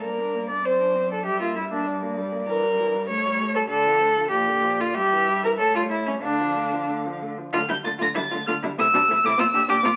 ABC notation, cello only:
X:1
M:2/4
L:1/16
Q:1/4=97
K:Gdor
V:1 name="Cello" clef=bass
G,,4 ^F,,4 | G,,8- | [K:Dm] G,,4 A,,4 | D,4 B,,4 |
G,,4 A,,4 | D,6- D, z | D, D, D, D, D, D, D, D, | C, C, C, C, B,, B,, B,, B,, |]